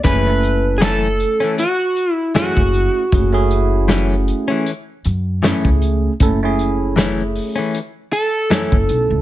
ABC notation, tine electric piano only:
X:1
M:4/4
L:1/16
Q:"Swing 16ths" 1/4=78
K:F#m
V:1 name="Tine electric piano"
[A,CEG] [A,CEA]6- [A,CEA] z4 [A,CEG]3 z | [A,CEG] [A,CEG]6- [A,CEG] z4 [A,CEG]3 z | [A,CEA] [A,CEG]6- [A,CEG] z4 [A,CEA]3 z |]